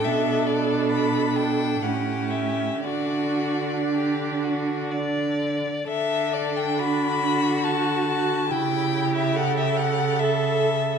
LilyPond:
<<
  \new Staff \with { instrumentName = "Violin" } { \time 3/4 \key d \major \tempo 4 = 68 e''8 d''8 b''8 g''8 fis''8 e''8 | d''2 r4 | e''8 d''16 g''16 b''4 a''4 | g''8. e''16 fis''16 e''16 fis''8 e''4 | }
  \new Staff \with { instrumentName = "Violin" } { \time 3/4 \key d \major a'2 g'4 | fis'4 g'8 fis'8 d''4 | a'4 fis'2 | g'2 a'4 | }
  \new Staff \with { instrumentName = "Viola" } { \time 3/4 \key d \major d'2 cis'4 | d'2~ d'8. r16 | d'2 fis'8 fis'8 | e'4 a'2 | }
  \new Staff \with { instrumentName = "Cello" } { \clef bass \time 3/4 \key d \major b,2 a,4 | d2~ d8. r16 | d2. | cis2. | }
>>